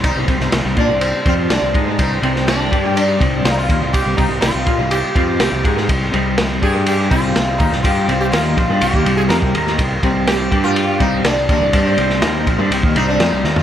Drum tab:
RD |x-x-x-x-x-x-x-x-|x-x-x-x-x-x-x-x-|x-x-x-x-x-x-x-x-|x-x-x-x-x-x-x-x-|
SD |---oo-------o---|---oo-------o---|----o-------o--o|----o-------o--o|
FT |----------------|----------------|----------------|----------------|
BD |o-o---o---o---o-|o-----o---o---o-|o-o---o---o---o-|o-----o---o---o-|

RD |x-x-x-x-x-x-x-x-|x-x-x-x-x-x-x-x-|x-x-x-x-x-x-x---|
SD |----o-------o--o|----o-------o---|---oo-------o-o-|
FT |----------------|----------------|---------------o|
BD |o-----o--o---o--|o-o---o---o---o-|o-----o--o------|